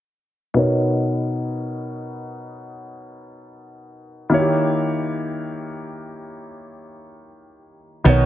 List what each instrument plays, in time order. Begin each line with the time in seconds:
0.54 grand piano B2 B3 D#4 A#4
0.58 grand piano C#5
4.29 grand piano D#3 A#3 E4 F#4
4.34 grand piano C#5
4.39 grand piano G4
8.04 fretless electric bass B1, steel-string acoustic guitar B2 D#4, grand piano D#3 B3 D#4 A#4
8.09 grand piano C#5